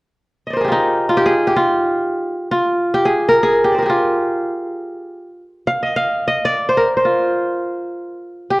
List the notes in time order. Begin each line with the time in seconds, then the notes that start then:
0.47 D5 D#5
0.53 A#4 C5
0.61 G4 G#4
0.68 D#4 F4
1.09 F4
1.17 G4
1.26 G#4
1.47 G4
1.56 F4
2.51 F4
2.94 G4
3.05 G#4
3.29 A#4
3.43 G#4
3.64 G4
3.72 C5 D5
3.78 A#4
3.82 G4 G#4
3.89 F4
5.67 F5
5.83 D#5
5.96 F5
6.28 D#5
6.45 D5
6.69 C5
6.77 A#4
6.97 C5
7.05 F4
8.50 G4